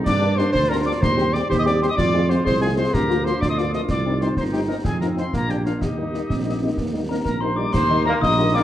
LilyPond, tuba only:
\new Staff \with { instrumentName = "Tuba" } { \clef bass \time 6/8 \key ees \major \tempo 4. = 125 g,4. d,4. | ees,4. ees,4. | f,4. c,4. | d,4. d,4. |
c,4. g,,4. | f,4. bes,,4. | ees,4. bes,,4. | ees,4. bes,,4. |
ees,4. bes,,4. | }